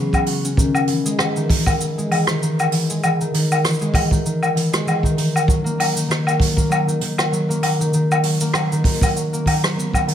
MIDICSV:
0, 0, Header, 1, 3, 480
1, 0, Start_track
1, 0, Tempo, 612245
1, 452, Time_signature, 4, 2, 24, 8
1, 7952, End_track
2, 0, Start_track
2, 0, Title_t, "Harp"
2, 0, Program_c, 0, 46
2, 0, Note_on_c, 0, 49, 74
2, 0, Note_on_c, 0, 59, 82
2, 213, Note_on_c, 0, 66, 74
2, 348, Note_on_c, 0, 61, 84
2, 451, Note_on_c, 0, 51, 81
2, 492, Note_off_c, 0, 49, 0
2, 693, Note_on_c, 0, 52, 77
2, 825, Note_on_c, 0, 56, 105
2, 927, Note_off_c, 0, 52, 0
2, 937, Note_on_c, 0, 52, 80
2, 1058, Note_off_c, 0, 51, 0
2, 1068, Note_on_c, 0, 51, 77
2, 1092, Note_off_c, 0, 52, 0
2, 1092, Note_off_c, 0, 56, 0
2, 1163, Note_off_c, 0, 51, 0
2, 1173, Note_on_c, 0, 51, 77
2, 1414, Note_on_c, 0, 52, 76
2, 1550, Note_on_c, 0, 56, 97
2, 1650, Note_off_c, 0, 52, 0
2, 1659, Note_on_c, 0, 52, 80
2, 1782, Note_off_c, 0, 51, 0
2, 1791, Note_on_c, 0, 51, 83
2, 1812, Note_off_c, 0, 52, 0
2, 1812, Note_off_c, 0, 56, 0
2, 1890, Note_off_c, 0, 51, 0
2, 1899, Note_on_c, 0, 51, 89
2, 2124, Note_off_c, 0, 66, 0
2, 2134, Note_on_c, 0, 52, 78
2, 2271, Note_on_c, 0, 56, 108
2, 2370, Note_off_c, 0, 52, 0
2, 2379, Note_on_c, 0, 52, 80
2, 2405, Note_off_c, 0, 59, 0
2, 2503, Note_off_c, 0, 51, 0
2, 2512, Note_on_c, 0, 51, 83
2, 2532, Note_off_c, 0, 52, 0
2, 2532, Note_off_c, 0, 56, 0
2, 2606, Note_off_c, 0, 51, 0
2, 2615, Note_on_c, 0, 51, 76
2, 2620, Note_off_c, 0, 61, 0
2, 2858, Note_on_c, 0, 52, 83
2, 2986, Note_on_c, 0, 56, 97
2, 3083, Note_off_c, 0, 52, 0
2, 3093, Note_on_c, 0, 52, 78
2, 3217, Note_off_c, 0, 51, 0
2, 3226, Note_on_c, 0, 51, 78
2, 3252, Note_off_c, 0, 52, 0
2, 3252, Note_off_c, 0, 56, 0
2, 3324, Note_off_c, 0, 51, 0
2, 3333, Note_on_c, 0, 51, 83
2, 3568, Note_on_c, 0, 52, 80
2, 3703, Note_on_c, 0, 56, 107
2, 3799, Note_off_c, 0, 52, 0
2, 3808, Note_on_c, 0, 52, 88
2, 3938, Note_off_c, 0, 51, 0
2, 3948, Note_on_c, 0, 51, 82
2, 3972, Note_off_c, 0, 52, 0
2, 3972, Note_off_c, 0, 56, 0
2, 4045, Note_off_c, 0, 51, 0
2, 4054, Note_on_c, 0, 51, 79
2, 4295, Note_on_c, 0, 54, 87
2, 4332, Note_off_c, 0, 51, 0
2, 4423, Note_on_c, 0, 58, 110
2, 4521, Note_off_c, 0, 54, 0
2, 4531, Note_on_c, 0, 54, 83
2, 4662, Note_on_c, 0, 51, 73
2, 4692, Note_off_c, 0, 54, 0
2, 4759, Note_off_c, 0, 51, 0
2, 4769, Note_on_c, 0, 51, 89
2, 5010, Note_on_c, 0, 54, 77
2, 5142, Note_off_c, 0, 58, 0
2, 5145, Note_on_c, 0, 58, 96
2, 5238, Note_off_c, 0, 54, 0
2, 5247, Note_on_c, 0, 54, 83
2, 5376, Note_off_c, 0, 51, 0
2, 5385, Note_on_c, 0, 51, 80
2, 5412, Note_off_c, 0, 54, 0
2, 5488, Note_off_c, 0, 51, 0
2, 5497, Note_on_c, 0, 51, 84
2, 5734, Note_on_c, 0, 54, 88
2, 5867, Note_off_c, 0, 58, 0
2, 5870, Note_on_c, 0, 58, 111
2, 5969, Note_off_c, 0, 54, 0
2, 5978, Note_on_c, 0, 54, 77
2, 6106, Note_off_c, 0, 51, 0
2, 6116, Note_on_c, 0, 51, 81
2, 6132, Note_off_c, 0, 54, 0
2, 6214, Note_off_c, 0, 51, 0
2, 6224, Note_on_c, 0, 51, 82
2, 6456, Note_on_c, 0, 54, 76
2, 6589, Note_off_c, 0, 58, 0
2, 6592, Note_on_c, 0, 58, 106
2, 6690, Note_off_c, 0, 54, 0
2, 6699, Note_on_c, 0, 54, 83
2, 6825, Note_off_c, 0, 51, 0
2, 6835, Note_on_c, 0, 51, 82
2, 6852, Note_off_c, 0, 54, 0
2, 6928, Note_off_c, 0, 51, 0
2, 6937, Note_on_c, 0, 51, 80
2, 7180, Note_on_c, 0, 54, 81
2, 7310, Note_off_c, 0, 58, 0
2, 7313, Note_on_c, 0, 58, 107
2, 7407, Note_off_c, 0, 51, 0
2, 7416, Note_on_c, 0, 51, 80
2, 7452, Note_off_c, 0, 54, 0
2, 7553, Note_on_c, 0, 54, 82
2, 7653, Note_on_c, 0, 59, 86
2, 7700, Note_off_c, 0, 58, 0
2, 7887, Note_off_c, 0, 51, 0
2, 7896, Note_on_c, 0, 51, 85
2, 7932, Note_off_c, 0, 54, 0
2, 7952, Note_off_c, 0, 51, 0
2, 7952, Note_off_c, 0, 59, 0
2, 7952, End_track
3, 0, Start_track
3, 0, Title_t, "Drums"
3, 101, Note_on_c, 9, 36, 62
3, 107, Note_on_c, 9, 69, 50
3, 111, Note_on_c, 9, 77, 75
3, 180, Note_off_c, 9, 36, 0
3, 185, Note_off_c, 9, 69, 0
3, 190, Note_off_c, 9, 77, 0
3, 207, Note_on_c, 9, 46, 93
3, 285, Note_off_c, 9, 46, 0
3, 352, Note_on_c, 9, 69, 65
3, 431, Note_off_c, 9, 69, 0
3, 450, Note_on_c, 9, 36, 104
3, 461, Note_on_c, 9, 69, 77
3, 528, Note_off_c, 9, 36, 0
3, 540, Note_off_c, 9, 69, 0
3, 585, Note_on_c, 9, 77, 76
3, 591, Note_on_c, 9, 69, 48
3, 663, Note_off_c, 9, 77, 0
3, 670, Note_off_c, 9, 69, 0
3, 686, Note_on_c, 9, 46, 83
3, 764, Note_off_c, 9, 46, 0
3, 831, Note_on_c, 9, 69, 75
3, 909, Note_off_c, 9, 69, 0
3, 931, Note_on_c, 9, 37, 76
3, 932, Note_on_c, 9, 77, 81
3, 939, Note_on_c, 9, 69, 67
3, 1009, Note_off_c, 9, 37, 0
3, 1010, Note_off_c, 9, 77, 0
3, 1017, Note_off_c, 9, 69, 0
3, 1067, Note_on_c, 9, 69, 48
3, 1146, Note_off_c, 9, 69, 0
3, 1173, Note_on_c, 9, 36, 102
3, 1174, Note_on_c, 9, 46, 87
3, 1251, Note_off_c, 9, 36, 0
3, 1253, Note_off_c, 9, 46, 0
3, 1305, Note_on_c, 9, 77, 75
3, 1306, Note_on_c, 9, 36, 93
3, 1310, Note_on_c, 9, 69, 76
3, 1383, Note_off_c, 9, 77, 0
3, 1384, Note_off_c, 9, 36, 0
3, 1389, Note_off_c, 9, 69, 0
3, 1418, Note_on_c, 9, 69, 67
3, 1496, Note_off_c, 9, 69, 0
3, 1557, Note_on_c, 9, 69, 46
3, 1635, Note_off_c, 9, 69, 0
3, 1658, Note_on_c, 9, 46, 76
3, 1658, Note_on_c, 9, 77, 71
3, 1736, Note_off_c, 9, 46, 0
3, 1736, Note_off_c, 9, 77, 0
3, 1781, Note_on_c, 9, 37, 82
3, 1785, Note_on_c, 9, 69, 74
3, 1859, Note_off_c, 9, 37, 0
3, 1864, Note_off_c, 9, 69, 0
3, 1903, Note_on_c, 9, 69, 65
3, 1981, Note_off_c, 9, 69, 0
3, 2034, Note_on_c, 9, 69, 51
3, 2037, Note_on_c, 9, 77, 80
3, 2112, Note_off_c, 9, 69, 0
3, 2115, Note_off_c, 9, 77, 0
3, 2131, Note_on_c, 9, 46, 90
3, 2209, Note_off_c, 9, 46, 0
3, 2273, Note_on_c, 9, 69, 67
3, 2352, Note_off_c, 9, 69, 0
3, 2379, Note_on_c, 9, 69, 69
3, 2380, Note_on_c, 9, 77, 83
3, 2457, Note_off_c, 9, 69, 0
3, 2458, Note_off_c, 9, 77, 0
3, 2516, Note_on_c, 9, 69, 50
3, 2594, Note_off_c, 9, 69, 0
3, 2620, Note_on_c, 9, 46, 97
3, 2698, Note_off_c, 9, 46, 0
3, 2757, Note_on_c, 9, 69, 71
3, 2759, Note_on_c, 9, 77, 74
3, 2835, Note_off_c, 9, 69, 0
3, 2837, Note_off_c, 9, 77, 0
3, 2859, Note_on_c, 9, 37, 72
3, 2860, Note_on_c, 9, 69, 68
3, 2880, Note_off_c, 9, 69, 0
3, 2880, Note_on_c, 9, 69, 54
3, 2901, Note_off_c, 9, 69, 0
3, 2901, Note_on_c, 9, 69, 47
3, 2925, Note_off_c, 9, 69, 0
3, 2925, Note_on_c, 9, 69, 38
3, 2937, Note_off_c, 9, 37, 0
3, 2937, Note_off_c, 9, 69, 0
3, 2937, Note_on_c, 9, 69, 33
3, 2972, Note_off_c, 9, 69, 0
3, 2972, Note_on_c, 9, 69, 26
3, 2992, Note_off_c, 9, 69, 0
3, 2992, Note_on_c, 9, 69, 48
3, 3070, Note_off_c, 9, 69, 0
3, 3086, Note_on_c, 9, 36, 94
3, 3093, Note_on_c, 9, 46, 106
3, 3094, Note_on_c, 9, 77, 81
3, 3165, Note_off_c, 9, 36, 0
3, 3172, Note_off_c, 9, 46, 0
3, 3172, Note_off_c, 9, 77, 0
3, 3223, Note_on_c, 9, 36, 93
3, 3234, Note_on_c, 9, 69, 62
3, 3302, Note_off_c, 9, 36, 0
3, 3312, Note_off_c, 9, 69, 0
3, 3338, Note_on_c, 9, 69, 72
3, 3417, Note_off_c, 9, 69, 0
3, 3470, Note_on_c, 9, 77, 74
3, 3473, Note_on_c, 9, 69, 43
3, 3548, Note_off_c, 9, 77, 0
3, 3551, Note_off_c, 9, 69, 0
3, 3581, Note_on_c, 9, 46, 89
3, 3659, Note_off_c, 9, 46, 0
3, 3713, Note_on_c, 9, 69, 75
3, 3714, Note_on_c, 9, 37, 82
3, 3791, Note_off_c, 9, 69, 0
3, 3792, Note_off_c, 9, 37, 0
3, 3823, Note_on_c, 9, 69, 63
3, 3827, Note_on_c, 9, 77, 73
3, 3902, Note_off_c, 9, 69, 0
3, 3906, Note_off_c, 9, 77, 0
3, 3945, Note_on_c, 9, 36, 62
3, 3965, Note_on_c, 9, 69, 53
3, 4024, Note_off_c, 9, 36, 0
3, 4043, Note_off_c, 9, 69, 0
3, 4060, Note_on_c, 9, 46, 90
3, 4139, Note_off_c, 9, 46, 0
3, 4200, Note_on_c, 9, 77, 73
3, 4207, Note_on_c, 9, 69, 67
3, 4279, Note_off_c, 9, 77, 0
3, 4286, Note_off_c, 9, 69, 0
3, 4297, Note_on_c, 9, 36, 101
3, 4310, Note_on_c, 9, 69, 75
3, 4375, Note_off_c, 9, 36, 0
3, 4388, Note_off_c, 9, 69, 0
3, 4440, Note_on_c, 9, 69, 47
3, 4518, Note_off_c, 9, 69, 0
3, 4546, Note_on_c, 9, 77, 72
3, 4548, Note_on_c, 9, 46, 107
3, 4625, Note_off_c, 9, 77, 0
3, 4626, Note_off_c, 9, 46, 0
3, 4679, Note_on_c, 9, 69, 84
3, 4757, Note_off_c, 9, 69, 0
3, 4789, Note_on_c, 9, 69, 69
3, 4792, Note_on_c, 9, 37, 72
3, 4867, Note_off_c, 9, 69, 0
3, 4871, Note_off_c, 9, 37, 0
3, 4915, Note_on_c, 9, 77, 83
3, 4925, Note_on_c, 9, 69, 52
3, 4993, Note_off_c, 9, 77, 0
3, 5003, Note_off_c, 9, 69, 0
3, 5015, Note_on_c, 9, 36, 106
3, 5027, Note_on_c, 9, 46, 94
3, 5093, Note_off_c, 9, 36, 0
3, 5105, Note_off_c, 9, 46, 0
3, 5151, Note_on_c, 9, 36, 81
3, 5158, Note_on_c, 9, 69, 64
3, 5229, Note_off_c, 9, 36, 0
3, 5237, Note_off_c, 9, 69, 0
3, 5266, Note_on_c, 9, 69, 71
3, 5267, Note_on_c, 9, 77, 78
3, 5344, Note_off_c, 9, 69, 0
3, 5346, Note_off_c, 9, 77, 0
3, 5399, Note_on_c, 9, 69, 49
3, 5477, Note_off_c, 9, 69, 0
3, 5496, Note_on_c, 9, 46, 85
3, 5574, Note_off_c, 9, 46, 0
3, 5632, Note_on_c, 9, 77, 76
3, 5635, Note_on_c, 9, 37, 66
3, 5635, Note_on_c, 9, 69, 81
3, 5710, Note_off_c, 9, 77, 0
3, 5714, Note_off_c, 9, 37, 0
3, 5714, Note_off_c, 9, 69, 0
3, 5749, Note_on_c, 9, 69, 64
3, 5827, Note_off_c, 9, 69, 0
3, 5886, Note_on_c, 9, 69, 48
3, 5964, Note_off_c, 9, 69, 0
3, 5980, Note_on_c, 9, 46, 97
3, 5982, Note_on_c, 9, 77, 75
3, 6059, Note_off_c, 9, 46, 0
3, 6060, Note_off_c, 9, 77, 0
3, 6124, Note_on_c, 9, 69, 70
3, 6202, Note_off_c, 9, 69, 0
3, 6220, Note_on_c, 9, 69, 73
3, 6298, Note_off_c, 9, 69, 0
3, 6361, Note_on_c, 9, 69, 56
3, 6364, Note_on_c, 9, 77, 85
3, 6440, Note_off_c, 9, 69, 0
3, 6442, Note_off_c, 9, 77, 0
3, 6455, Note_on_c, 9, 46, 102
3, 6534, Note_off_c, 9, 46, 0
3, 6589, Note_on_c, 9, 69, 77
3, 6667, Note_off_c, 9, 69, 0
3, 6692, Note_on_c, 9, 37, 83
3, 6699, Note_on_c, 9, 77, 86
3, 6700, Note_on_c, 9, 69, 71
3, 6770, Note_off_c, 9, 37, 0
3, 6778, Note_off_c, 9, 77, 0
3, 6779, Note_off_c, 9, 69, 0
3, 6838, Note_on_c, 9, 69, 46
3, 6916, Note_off_c, 9, 69, 0
3, 6933, Note_on_c, 9, 36, 100
3, 6936, Note_on_c, 9, 46, 94
3, 7005, Note_off_c, 9, 46, 0
3, 7005, Note_on_c, 9, 46, 78
3, 7011, Note_off_c, 9, 36, 0
3, 7067, Note_on_c, 9, 36, 110
3, 7075, Note_off_c, 9, 46, 0
3, 7075, Note_on_c, 9, 46, 55
3, 7077, Note_on_c, 9, 69, 74
3, 7080, Note_on_c, 9, 77, 73
3, 7121, Note_off_c, 9, 46, 0
3, 7121, Note_on_c, 9, 46, 50
3, 7145, Note_off_c, 9, 36, 0
3, 7155, Note_off_c, 9, 69, 0
3, 7159, Note_off_c, 9, 77, 0
3, 7186, Note_on_c, 9, 69, 61
3, 7200, Note_off_c, 9, 46, 0
3, 7265, Note_off_c, 9, 69, 0
3, 7319, Note_on_c, 9, 69, 54
3, 7398, Note_off_c, 9, 69, 0
3, 7415, Note_on_c, 9, 36, 55
3, 7423, Note_on_c, 9, 46, 93
3, 7428, Note_on_c, 9, 77, 74
3, 7494, Note_off_c, 9, 36, 0
3, 7502, Note_off_c, 9, 46, 0
3, 7507, Note_off_c, 9, 77, 0
3, 7557, Note_on_c, 9, 37, 81
3, 7558, Note_on_c, 9, 69, 75
3, 7636, Note_off_c, 9, 37, 0
3, 7636, Note_off_c, 9, 69, 0
3, 7679, Note_on_c, 9, 69, 68
3, 7757, Note_off_c, 9, 69, 0
3, 7789, Note_on_c, 9, 36, 60
3, 7796, Note_on_c, 9, 77, 75
3, 7802, Note_on_c, 9, 69, 56
3, 7868, Note_off_c, 9, 36, 0
3, 7875, Note_off_c, 9, 77, 0
3, 7880, Note_off_c, 9, 69, 0
3, 7904, Note_on_c, 9, 46, 97
3, 7952, Note_off_c, 9, 46, 0
3, 7952, End_track
0, 0, End_of_file